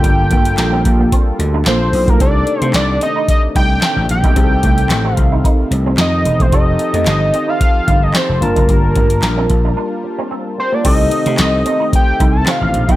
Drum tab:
CC |----------------|----------------|----------------|----------------|
HH |x-xxx-x-x-x-x-ox|x-xxx-x-x-x-x-xx|x-xxx-x-x-x-x-xx|x-xxx-x-x-x-x-xx|
CP |----x-------x---|----x-------x---|----x-------x---|----x-------x---|
SD |----o-------o---|----o-------o---|----o-------o---|----o-------o---|
BD |o-o---o-o------o|o-------o-o----o|o-o---o-o------o|o-------o-o----o|

CC |----------------|x---------------|
HH |x-xxx-x---------|x-xxx-x-x-x-x-xx|
CP |----x-----------|----x-------x---|
SD |----o-----------|----o-------o---|
BD |o-o---o---------|o-------o-o----o|